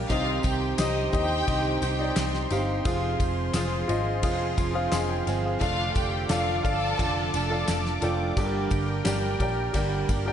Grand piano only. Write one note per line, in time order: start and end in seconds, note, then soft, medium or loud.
0.00 0.12 D4 medium
0.00 0.10 G4 medium
0.00 0.12 A#4 medium
0.00 0.11 C5 medium
0.00 0.12 D5 medium
0.00 0.12 F5 loud
0.00 0.12 G5 medium
0.00 0.12 G#5 medium
0.00 0.12 A#5 medium
0.10 1.10 C3 medium
0.10 0.69 D#4 medium
0.10 0.70 G4 medium
0.10 0.70 C5 medium
0.10 0.70 D#5 medium
0.78 1.08 D#4 medium
0.78 1.09 G4 medium
0.78 1.09 C5 medium
0.78 1.09 D#5 medium
1.12 1.42 D#4 medium
1.12 1.43 G4 medium
1.12 1.43 C5 medium
1.12 1.43 D#5 medium
1.47 1.92 D#4 medium
1.47 1.92 G4 medium
1.47 1.93 C5 medium
1.47 1.93 D#5 medium
1.99 2.44 D#4 medium
1.99 2.44 G4 medium
1.99 2.45 C5 medium
1.99 2.45 D5 medium
2.50 2.81 D#4 medium
2.50 2.81 G4 medium
2.50 2.81 C5 medium
2.50 2.82 F5 medium
2.85 3.45 F4 medium
2.85 3.45 G#4 medium
2.85 3.46 C5 medium
2.85 3.46 F5 medium
3.55 3.85 F4 medium
3.55 3.85 G#4 medium
3.55 3.85 C5 medium
3.55 3.86 F5 medium
3.88 4.18 F4 medium
3.88 4.19 G#4 medium
3.88 4.19 C5 medium
3.88 4.19 D#5 medium
4.22 4.68 F4 medium
4.22 4.68 G#4 medium
4.22 4.68 C5 medium
4.22 4.69 F5 medium
4.58 4.90 C6 medium
4.73 5.19 F4 medium
4.73 4.92 G#4 medium
4.73 4.92 C5 medium
4.73 4.93 F5 loud
4.93 5.26 D#5 medium
4.93 5.09 G#5 medium
4.93 5.26 C6 medium
5.10 5.26 G5 medium
5.27 5.44 C5 medium
5.27 5.44 F5 medium
5.27 5.44 G#5 medium
5.45 5.78 G#4 medium
5.45 5.60 F5 medium
5.60 6.20 F4 medium
5.60 6.21 A4 medium
5.60 6.21 D5 medium
5.60 6.21 F5 medium
6.30 6.60 F4 loud
6.30 6.60 A4 medium
6.30 6.60 D5 medium
6.30 6.61 F5 loud
6.63 6.94 F4 medium
6.63 6.94 A4 medium
6.63 6.95 D5 medium
6.63 6.95 F5 loud
6.98 7.43 F4 medium
6.98 7.43 A4 medium
6.98 7.44 D5 medium
6.98 7.44 F5 medium
7.50 7.95 F4 medium
7.50 7.95 A4 medium
7.50 7.96 D5 medium
7.50 7.96 F5 medium
8.02 8.32 F4 medium
8.02 8.32 A4 medium
8.02 8.33 D5 medium
8.02 8.33 G5 medium
8.37 9.37 G2 medium
8.37 8.97 G4 medium
8.37 8.44 A4 medium
8.37 8.97 D5 medium
8.37 8.98 G5 medium
8.44 9.00 A#4 medium
9.04 9.35 G4 medium
9.04 9.35 A#4 medium
9.04 9.36 D5 medium
9.04 9.36 G5 medium
9.40 9.70 G4 medium
9.40 9.70 A#4 medium
9.40 9.71 D5 medium
9.40 9.71 G5 medium
9.73 10.19 G4 medium
9.73 10.19 A#4 medium
9.73 10.20 D5 medium
9.73 10.20 G5 medium
10.26 10.33 G4 medium
10.26 10.33 A#4 medium
10.26 10.33 D5 medium
10.26 10.33 G5 loud